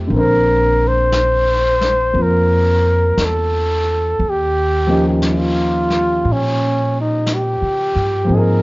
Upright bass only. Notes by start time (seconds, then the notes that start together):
0.10 A#1
2.14 F2
3.18 E2
4.19 D#2
6.25 A#2
7.62 C#3
7.96 G2
8.29 G#2